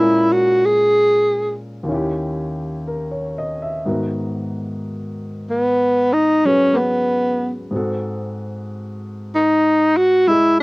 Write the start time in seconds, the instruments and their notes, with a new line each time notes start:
Already playing: grand piano A#2 G#3 C#4 E4, tenor saxophone E4
0.01 grand piano A#4
0.33 tenor saxophone F#4
0.66 tenor saxophone G#4
1.83 grand piano D#2 D#3
1.89 grand piano C#4 E4
1.94 grand piano G4
2.87 grand piano A#4
3.11 grand piano C#5
3.38 grand piano D#5
3.62 grand piano E5
3.86 grand piano G#2 D#3 B3 F#4 A#4
5.50 tenor saxophone B3
6.13 tenor saxophone D#4
6.45 grand piano F#3 C#4 G#4 B4, tenor saxophone C#4
6.74 tenor saxophone A#3 B3
7.71 grand piano G#2 G#3 C4
7.75 grand piano F#4 A4
9.35 tenor saxophone D#4
9.97 tenor saxophone F#4
10.27 grand piano G#3 G#4 D#5, tenor saxophone E4